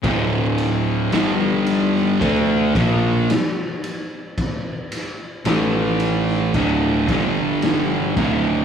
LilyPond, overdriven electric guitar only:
\new Staff \with { instrumentName = "Overdriven electric guitar" } { \clef bass \time 4/4 \key d \minor \tempo 4 = 55 <d, a, d>4 <g, d g>4 <d a d'>8 <bes, f bes>8 r4 | r4 <a, e a>4 <d, a, d>8 <g, d g>4 <d, a, d>8 | }